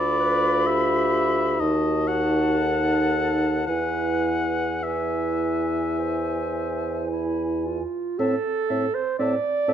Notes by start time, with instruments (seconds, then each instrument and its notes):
Already playing: bassoon D2, french horn F4, clarinet A4, oboe D5, flute B5
0.19 clarinet B4
0.66 clarinet G4, oboe E5
1.60 bassoon D#2, french horn D#4, clarinet F#4, oboe D#5, flute A5
2.08 oboe F#5
2.58 clarinet A4
3.67 bassoon E2, french horn E4, clarinet B4, oboe F#5, flute G#5
4.83 french horn E4, clarinet B4, oboe E5, flute G#5
5.98 clarinet C5
7.10 clarinet E4
7.65 clarinet F4
8.19 bassoon A2, french horn C4, clarinet A4, oboe E5, flute A5
8.69 bassoon A2, french horn C4, oboe E5, flute A5
8.94 clarinet C5
9.18 bassoon A2, french horn C4, clarinet D5, oboe E5, flute A5
9.67 bassoon A2, french horn C4, oboe E5, flute A5